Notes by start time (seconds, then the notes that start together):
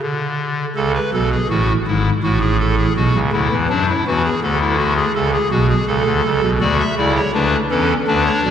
0.02 D3
0.76 C#2 C#3 A4
0.95 B4
1.13 B1 B2 A4
1.32 G#4
1.50 A1 A2 F#4
1.87 G#1 G#2 E4
2.23 A1 A2 F#4
2.41 G#4
2.59 A4
2.77 G#4
2.97 B1 B2 F#4
3.15 C#2 C#3
3.33 D2 D3 E4
3.51 E2 E3
3.69 F#2 F#3 D4
3.88 E4
4.07 E2 E3 F#4
4.24 G#4
4.43 D2 D3 A4
4.60 E4
4.78 F#4
4.97 G#4
5.15 C#2 C#3 A4
5.33 G#4
5.51 B1 B2 F#4
5.69 G#4
5.87 C#2 C#3 A4
6.06 D2 D3
6.25 C#2 C#3
6.43 B1 B2
6.61 D2 D3 F#4 D5
6.79 E5
6.98 C#2 C#3 E4 D5
7.16 C#5
7.34 D2 D3 D4 B4
7.71 E2 E3 C#4 A4
8.07 D2 D3 D4 B4
8.26 C#5
8.45 B1 B2 D5